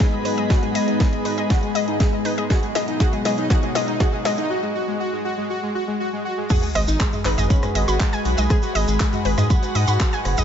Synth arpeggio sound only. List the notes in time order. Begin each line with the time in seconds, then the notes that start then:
0.25 B4
0.38 D#5
0.50 G#4
0.75 D#5
1.00 G#4
1.25 B4
1.38 D#5
1.50 G#4
1.75 D#5
2.00 G#4
2.25 B4
2.38 D#5
2.50 G#4
2.75 D#5
3.00 G#4
3.25 D#5
3.50 G#4
3.75 D#5
4.00 G#4
4.25 D#5
6.50 G#4 G#5
6.75 D#5 D#6
7.00 G#4 G#5
7.25 B4 B5
7.38 D#5 D#6
7.50 B5
7.75 D#5 D#6
7.88 B5
8.13 G#5 G#6
8.38 D#5 D#6
8.50 G#4 G#5
8.75 D#5 D#6
9.00 G#4 G#5
9.25 B4 B5
9.38 D#5 D#6
9.50 B5
9.75 D#5 D#6
9.88 B5
10.13 G#5 G#6
10.38 D#5 D#6